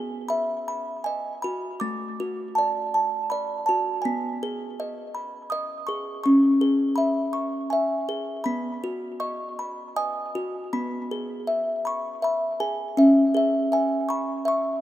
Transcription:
Already playing: B3 G#4 G#5
0.28 E5 B5
0.68 B5
1.04 D#5 G#5
1.42 F#4 B5
1.80 A3 D6
2.20 F#4
2.55 D5 A5
2.94 A5
3.30 D5 B5
3.66 F#4 A5
4.02 B3 G#5
4.43 G#4
4.80 D#5
5.15 B5
5.50 D#5 D#6
5.87 G#4 C#6
6.24 C#4 C#6
6.61 G#4
6.96 E5 B5
7.33 C#6
7.70 E5 G#5
8.09 G#4
8.44 B3 B5
8.84 F#4
9.20 D#5 C#6
9.59 B5
9.96 D#5 G#5 D#6
10.35 F#4
10.73 B3 B5
11.11 G#4
11.47 E5
11.85 B5 C#6
12.22 E5 B5
12.60 G#4 G#5
12.97 C#4 E5
13.34 G#4 E5
13.72 E5 G#5
14.09 B5 C#6
14.45 E5 C#6

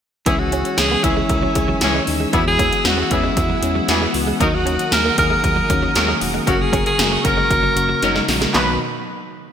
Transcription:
0.26 C#2 E3 G#3 B3 C#4 E4 G#4 C#5 G#5 E6, kick, closed hi-hat
0.39 F#4
0.51 E3 G#3 C#4 G#4, closed hi-hat
0.65 muted clean electric guitar stroke, closed hi-hat
0.77 C#2 E3 G#3 C#4 G#4, snare, closed hi-hat
0.91 B3
1.03 C#2 E3 G#3 C#4 E4 G#4, muted clean electric guitar stroke, kick, closed hi-hat
1.17 G#3
1.29 C#2 E3 G#3 C#4 A#4, kick, closed hi-hat
1.43 F#3
1.54 C#2 E3 G#3 C#4 G#4, muted clean electric guitar stroke, kick, closed hi-hat
1.68 F#3
1.80 C#2 E3 G#3 C#4 G#4, snare, closed hi-hat
1.95 G#3
2.06 D#2 E3 G#3 C#4 D#4, muted clean electric guitar stroke, open hi-hat
2.20 G#3
2.33 E2 E3 G#3 B3 E4 F#4 G#4 F#5, kick, closed hi-hat
2.48 G#4
2.58 E3 G#3 B3 C#4 F#4, kick, closed hi-hat
2.71 muted clean electric guitar stroke, closed hi-hat
2.84 E2 E3 G#3 B3 C#4 F#4, snare, closed hi-hat
2.98 B3
3.10 E2 E3 G#3 B3 C#4 E4 G#4, muted clean electric guitar stroke, kick, closed hi-hat
3.24 G#3
3.36 E2 E3 G#3 B3 F#4, kick, closed hi-hat
3.50 F#3
3.62 E2 E3 G#3 B3 C#4, muted clean electric guitar stroke, closed hi-hat
3.75 F#3
3.88 E2 E3 G#3 B3 F#4 G#4, snare, closed hi-hat
4.02 G#3
4.14 C#2 E3 G#3 B3 F#4, muted clean electric guitar stroke, open hi-hat
4.27 G#3
4.39 D#2 D#3 F#3 A#3 D#4 F#4 A#4 D#6, kick, closed hi-hat
4.54 F#4
4.65 D#3 F#3 A#3 C#4 F#4, closed hi-hat
4.79 muted clean electric guitar stroke, closed hi-hat
4.91 D#2 D#3 F#3 A#3 G#4 A#4, snare, closed hi-hat
5.05 A#3
5.17 D#2 D#3 F#3 A#3 D#4 G#4 A#4, muted clean electric guitar stroke, kick, closed hi-hat
5.30 G#3
5.42 D#2 D#3 F#3 A#3 G#4, kick, closed hi-hat
5.56 F#3
5.69 D#2 D#3 F#3 A#3 C#4, muted clean electric guitar stroke, kick, closed hi-hat
5.83 F#3
5.94 D#2 D#3 F#3 A#3 D#4 G#4 A#4, snare, closed hi-hat
6.08 G#3
6.21 E1 D#3 F#3 A#3 F#4, muted clean electric guitar stroke, open hi-hat
6.34 G#3
6.46 F#1 C#3 F#3 A#3 C#4 F#4 A#4 C#6, kick, closed hi-hat
6.61 G#4
6.72 C#3 F#3 A#3 C#4 G#4, kick, closed hi-hat
6.86 G#4, muted clean electric guitar stroke, closed hi-hat
6.98 F#1 C#3 F#3 A#3 F#4, snare, closed hi-hat
7.12 A#3
7.24 F#1 C#3 F#3 A#3 C#4 F#4 A#4, muted clean electric guitar stroke, kick, closed hi-hat
7.37 G#3
7.50 F#1 C#3 F#3 A#3 F#4, kick, closed hi-hat
7.63 F#3
7.76 F#1 C#3 F#3 A#3 F#4, muted clean electric guitar stroke, closed hi-hat
7.89 F#3
8.02 F#1 C#3 F#3 A#3 C#4 D#4 A#4, snare, closed hi-hat
8.15 G#3, snare
8.28 A#1 C#3 F#3 A#3 F#4, muted clean electric guitar stroke, snare, open hi-hat
8.41 G#3, snare, closed hi-hat
8.53 B1 B2 D#3 F#3 B3 D#4 F#4 B4, snare, clap

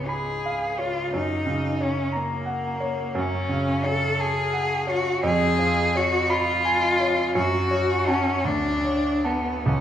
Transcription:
Already playing: C#2 G#2 C#5
0.07 G#4 B5
0.46 F5
0.79 F4 C#5
1.13 F#2 D#4
1.46 C#3
1.80 C#4 C#5
2.12 A#3 A#5
2.46 F#5
2.80 C#5
3.15 F#2 C#4
3.49 C#3
3.84 A4 C#5
4.19 G#4 A5
4.53 F#5
4.87 F#4 C#5
5.23 F2 G#4
5.59 F3
5.95 F#4 C#5
6.30 F4 B5
6.65 G#5
7.00 C#5
7.35 F#2 F#4
7.71 C#5
8.07 C#4 F#5 A5
8.44 D2 D4
8.84 C#5
9.25 B3 F#5 A5
9.66 C#2 C#4

